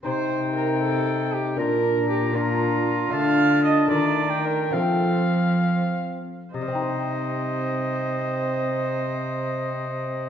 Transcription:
X:1
M:6/8
L:1/16
Q:3/8=71
K:Cdor
V:1 name="Oboe"
g12 | b6 b6 | a6 a3 g3 | f8- f2 z2 |
e12- | e12 |]
V:2 name="Viola"
c4 B2 A4 G2 | B4 G2 F6 | f4 e2 d4 B2 | A6 z6 |
c12- | c12 |]
V:3 name="Trombone"
E12 | D6 D6 | D6 D6 | C8- C2 z2 |
C12- | C12 |]
V:4 name="Lute"
[CE]12 | [B,DF]6 [B,DF]6 | [A,DF]6 [A,DF]6 | [A,CF]12 |
[C,G,CEc]12- | [C,G,CEc]12 |]
V:5 name="Lute" clef=bass
C,12 | B,,12 | D,6 E,6 | F,8- F,2 z2 |
z12 | z12 |]
V:6 name="Cello" clef=bass
C,12 | B,,12 | D,6 E,6 | F,8- F,2 z2 |
C,12- | C,12 |]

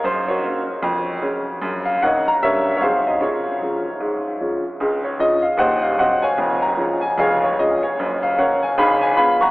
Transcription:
X:1
M:4/4
L:1/16
Q:"Swing" 1/4=151
K:Db
V:1 name="Upright piano"
c2 [GBd]12- [GBd]2 | z2 f2 [deg]2 b2 [Bd=e]3 d [Acf]2 _e2 | [FAd]12- [FAd]2 z2 | z2 d2 e2 f2 [ceg]2 f2 [ceg]2 [dfa]2- |
[dfa]2 b4 a2 [Adf]2 d2 e2 d2 | z2 f2 [Bdg]2 a2 [fa_c']2 a2 [fac']2 [gbd']2 |]
V:2 name="Upright piano" clef=bass
G,,4 [B,D]4 F,,4 [A,D]4 | G,,4 [B,DE]4 [=G,,=G,B,D]4 [A,,_G,A,C]4 | D,4 [F,A,D]4 A,,4 [F,A,D]4 | [D,,D,]4 [F,A,D]4 [E,,,E,,]4 [G,C]4 |
[F,,,F,,]4 [F,A,D]4 [F,,,F,,]4 [F,A,D]4 | [G,,,G,,]4 [B,D]4 [A,,,A,,]4 [A,_CF]4 |]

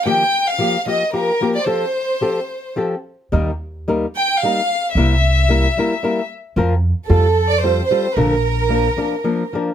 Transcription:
X:1
M:3/4
L:1/16
Q:1/4=111
K:Fmix
V:1 name="Violin section"
g3 f3 e2 B3 d | c8 z4 | z6 g2 f4 | =e8- e2 z2 |
z4 A3 d c2 c2 | B8- B2 z2 |]
V:2 name="Nylon-string guitar"
[E,F,B,FG]2 z2 [F,B,FG]2 [F,B,FG]2 [F,B,FG]2 [F,B,FG]2 | [F,CGA]2 z2 [F,CGA]2 z2 [F,CGA]2 z2 | [E,G,B,EB]2 z2 [G,B,EB]2 z2 [G,B,EB]2 z2 | [C,G,B,=EB]2 z2 [G,B,EB]2 [G,B,EB]2 [G,B,EB]2 z2 |
[F,CFB]2 z2 [G,CFA]2 z2 [G,CFA]2 [G,CFA]2 | [B,,D,F,B,DB]2 z2 [F,B,DB]2 [F,B,DB]2 [F,B,DB]2 [F,B,DB]2 |]
V:3 name="Upright bass" clef=bass
z12 | z12 | E,,8 z4 | C,,8 z4 |
F,,4 F,,8 | B,,,8 z4 |]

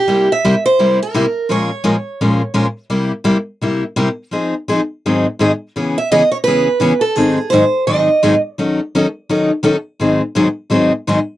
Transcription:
X:1
M:4/4
L:1/16
Q:"Swing" 1/4=169
K:Cphr
V:1 name="Steel-string acoustic guitar"
G2 =e4 c4 B6 | d12 z4 | z16 | z16 |
[K:C#m] z2 e2 d2 c2 B6 A2 | G4 ^B4 d6 z2 | z16 | z16 |]
V:2 name="Steel-string acoustic guitar"
[C,G,B,=EG]2 z2 [C,G,B,EG] z3 [C,G,B,EG]2 z2 [C,G,B,EG] z3 | [B,,F,A,DFB]2 z2 [B,,F,A,DFB] z3 [B,,F,A,DFB]2 z2 [B,,F,A,DFB] z3 | [C,G,B,=EG]2 z2 [C,G,B,EG] z3 [C,G,B,EG]2 z2 [C,G,B,EG] z3 | [F,CEA]2 z2 [F,CEA] z3 [A,,E,_G,CEA]2 z2 [A,,E,G,CEA] z3 |
[K:C#m] [C,E,B,CG]2 z2 [C,E,B,CG] z3 [C,E,B,CG]2 z2 [C,E,B,CG] z3 | [G,,D,F,^B,DG]2 z2 [G,,D,F,B,DG] z3 [G,,D,F,B,DG]2 z2 [G,,D,F,B,DG] z3 | [D,F,CDA]2 z2 [D,F,CDA] z3 [D,F,CDA]2 z2 [D,F,CDA] z3 | [G,,D,F,^B,DG]2 z2 [G,,D,F,B,DG] z3 [G,,D,F,B,DG]2 z2 [G,,D,F,B,DG] z3 |]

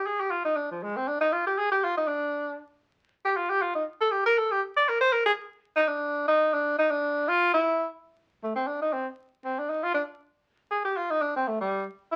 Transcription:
X:1
M:4/4
L:1/8
Q:"Swing" 1/4=237
K:Dphr
V:1 name="Tenor saxophone"
_A G F E D F, _A, C | D E F G _A G F E | D4 z4 | z G F G F E z A |
G B A G z d B c | B _A z3 E D2- | D E2 D2 E D2- | D F2 =E3 z2 |
z2 A, C D E C z | z2 C D E F D z | z4 _A G F E | D C A, G,2 z2 =E |]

